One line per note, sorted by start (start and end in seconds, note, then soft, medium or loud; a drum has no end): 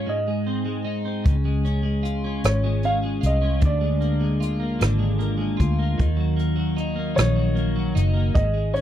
0.00 0.27 G#3 soft
0.00 0.16 C#4 soft
0.00 0.16 F4 medium
0.07 1.34 G#2 medium
0.07 0.94 D#5 medium
0.28 0.65 G#3 soft
0.47 1.04 C4 soft
0.66 1.45 G#3 soft
0.85 1.33 D#4 medium
1.05 1.34 C4 soft
1.24 2.40 C#2 medium
1.24 2.44 C#3 medium
1.24 kick medium
1.24 closed hi-hat medium
1.45 1.83 G#3 soft
1.65 2.23 C#4 soft
1.65 closed hi-hat soft
1.83 2.64 G#3 soft
2.03 3.21 F4 soft
2.03 closed hi-hat soft
2.24 2.83 C#4 soft
2.44 3.19 G#1 medium
2.44 2.86 C#5 medium
2.44 cross-stick medium
2.44 closed hi-hat medium
2.64 3.03 G#3 soft
2.83 3.40 C#4 soft
2.83 2.94 F5 medium
2.83 closed hi-hat soft
3.03 3.81 G#3 soft
3.21 3.60 C2 medium
3.21 4.40 F4 soft
3.21 closed hi-hat medium
3.26 3.65 D#5 medium
3.42 3.70 C#4 soft
3.60 4.77 D2 medium
3.60 4.78 D3 medium
3.60 kick medium
3.60 closed hi-hat soft
3.65 5.57 D5 medium
3.81 4.19 G#3 soft
4.01 4.59 A#3 soft
4.01 closed hi-hat soft
4.21 4.98 G#3 soft
4.40 5.56 F4 medium
4.40 closed hi-hat soft
4.60 5.19 A#3 soft
4.79 5.56 G#1 medium
4.79 5.97 D3 medium
4.79 cross-stick medium
4.79 closed hi-hat medium
4.99 5.36 G#3 soft
5.19 5.78 A#3 soft
5.19 closed hi-hat soft
5.38 6.06 G#3 soft
5.57 5.97 D2 medium
5.57 6.06 F4 medium
5.57 kick medium
5.57 closed hi-hat medium
5.79 6.36 A#3 soft
5.98 7.13 D#2 medium
5.98 7.14 D#3 medium
5.98 kick medium
5.98 closed hi-hat medium
6.17 6.55 F#3 soft
6.37 6.94 A#3 soft
6.37 closed hi-hat soft
6.56 7.34 F#3 soft
6.77 7.94 D#4 medium
6.77 closed hi-hat soft
6.95 7.54 A#3 soft
7.15 7.92 A#1 medium
7.15 8.42 D#3 medium
7.15 7.91 C#5 medium
7.15 cross-stick medium
7.15 closed hi-hat medium
7.36 7.75 F#3 soft
7.55 8.13 A#3 soft
7.55 closed hi-hat soft
7.76 8.43 F#3 soft
7.95 8.33 F#1 medium
7.95 8.43 D#4 medium
7.95 closed hi-hat medium
8.14 8.42 A#3 soft
8.35 8.81 G#1 medium
8.35 8.81 G#2 medium
8.35 8.76 D#5 medium
8.35 kick medium
8.35 closed hi-hat medium
8.54 8.81 G#3 soft
8.74 8.81 C#4 soft
8.74 8.81 C#5 medium
8.74 closed hi-hat soft